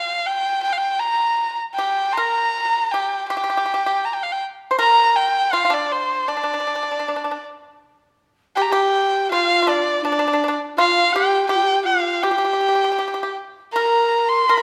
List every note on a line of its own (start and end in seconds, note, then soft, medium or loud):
0.00 0.28 F5 medium
0.26 0.62 G5 medium
0.63 0.74 G5 medium
0.73 0.79 F5 medium
0.77 1.01 G5 medium
1.00 1.59 A#5 medium
1.75 2.14 G4 medium
1.75 2.13 G5 medium
2.11 2.93 A#5 medium
2.11 2.15 C6 medium
2.17 2.89 A#4 medium
2.91 3.28 G4 medium
2.91 3.28 G5 medium
3.28 3.36 G4 medium
3.28 4.06 G5 medium
3.37 3.42 G4 soft
3.44 3.48 G4 medium
3.50 3.56 G4 soft
3.57 3.64 G4 medium
3.66 3.73 G4 soft
3.74 3.81 G4 medium
3.86 4.04 G4 medium
4.05 4.14 A#5 medium
4.13 4.24 G5 medium
4.23 4.34 F5 medium
4.32 4.41 G5 medium
4.71 4.78 C5 medium
4.79 5.49 A#4 medium
4.79 5.18 A#5 loud
5.16 5.54 G5 medium
5.53 5.64 F4 medium
5.53 5.75 F5 medium
5.65 5.72 F4 soft
5.70 6.23 D4 medium
5.70 5.93 D5 medium
5.92 6.29 C5 medium
6.28 6.35 D4 medium
6.28 7.42 D5 medium
6.37 6.42 D4 soft
6.43 6.50 D4 soft
6.54 6.59 D4 soft
6.60 6.66 D4 soft
6.67 6.74 D4 soft
6.75 6.82 D4 soft
6.83 6.89 D4 soft
6.91 6.97 D4 soft
6.99 7.05 D4 soft
7.08 7.14 D4 soft
7.16 7.21 D4 soft
7.24 7.29 D4 soft
7.31 7.37 D4 soft
8.56 8.69 G4 medium
8.56 8.63 G5 medium
8.62 8.73 A#5 medium
8.70 9.32 G4 medium
8.70 9.28 G4 medium
8.70 9.31 G5 medium
9.30 10.04 F4 medium
9.30 9.59 F4 medium
9.30 9.71 F5 loud
9.62 9.68 F4 soft
9.67 10.01 D4 medium
9.67 10.05 D5 medium
10.03 10.58 D4 medium
10.03 10.11 D4 medium
10.03 10.55 D5 medium
10.12 10.18 D4 soft
10.19 10.25 D4 medium
10.27 10.32 D4 medium
10.33 10.40 D4 medium
10.44 10.47 D4 soft
10.48 10.54 D4 medium
10.77 11.10 F4 medium
10.77 11.11 F4 medium
10.77 11.14 F5 medium
11.13 11.47 G4 medium
11.13 11.48 G4 medium
11.13 11.49 G5 medium
11.49 11.57 G4 medium
11.49 12.19 G4 medium
11.49 11.83 G5 medium
11.56 11.65 F4 medium
11.63 11.86 G4 medium
11.85 12.26 F4 medium
11.85 12.25 F5 medium
12.23 12.30 G4 medium
12.23 12.32 G4 medium
12.23 13.36 G5 medium
12.31 12.38 F4 medium
12.31 12.37 G4 soft
12.36 13.35 G4 medium
12.36 12.44 G4 medium
12.45 12.52 G4 soft
12.53 12.59 G4 soft
12.61 12.67 G4 soft
12.68 12.74 G4 soft
12.75 12.82 G4 soft
12.84 12.90 G4 soft
12.92 12.97 G4 soft
12.99 13.05 G4 soft
13.08 13.13 G4 soft
13.14 13.20 G4 soft
13.23 13.29 G4 soft
13.73 14.45 A#4 medium
13.73 14.46 A#4 medium
13.73 14.30 A#5 medium
14.29 14.49 C6 medium
14.48 14.56 A#4 medium
14.48 14.62 A#4 medium
14.48 14.62 A#5 medium
14.57 14.62 A#4 soft